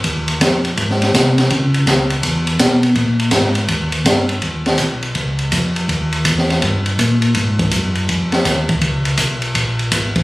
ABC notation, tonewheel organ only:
X:1
M:4/4
L:1/8
Q:"Swing" 1/4=164
K:G#m
V:1 name="Tonewheel organ" clef=bass
D,,2 ^E,,2 G,,2 ^B,,2 | C,2 C,,2 E,,2 B,,2 | A,,2 G,,2 D,,2 =G,,2 | [K:Abdor] E,,2 C,,2 D,,2 F,,2 |
E,,2 _F,,2 =G,,2 B,,2 | A,,2 G,,2 F,,2 E,,2 | D,,2 C,,2 B,,,2 A,,,2 |]